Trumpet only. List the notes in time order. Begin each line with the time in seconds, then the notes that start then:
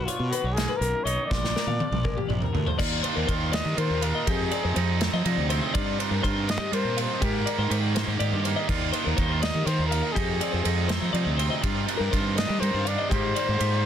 0.04 F4
0.30 F#4
0.53 G#4
0.77 A#4
1.03 C#5
1.26 D5
3.53 D#5
3.78 C5
4.03 A#4
4.30 G#4
6.50 D#5
6.74 C5
7.00 C5
7.24 A#4
9.42 D#5
9.66 C5
9.87 A#4
10.12 G#4
12.37 D#5
12.60 C5
12.87 D5
13.10 C5